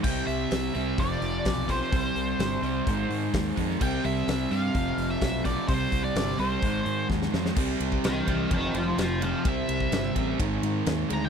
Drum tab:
CC |x---------------|----------------|x---------------|----------------|
RD |----------------|----------------|----------------|----------------|
HH |--o-o-o-o-o-o-o-|o-o-o-o-o-o-o-o-|--o-o-o-o-o-o-o-|o-o-o-o-o-o-----|
SD |----o-------o--o|----o-------o--o|----o-------o---|----o-------oooo|
BD |o-------o---o-o-|o-------o---o-o-|o-------o---o-o-|o-o-----o---o---|

CC |x---------------|----------------|
RD |--x-x-x-x-x-x-x-|x-x-x-x-x-x-x-x-|
HH |----------------|----------------|
SD |----o-------o---|----o-------o---|
BD |o--o--o-o-------|o--o--o-o-------|